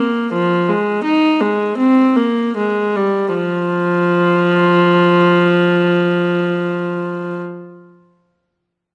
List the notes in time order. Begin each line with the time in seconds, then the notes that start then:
0.00 A#3
0.33 F3
0.69 G#3
1.04 D#4
1.41 G#3
1.77 C4
2.16 A#3
2.57 G#3
2.96 G3
3.34 F3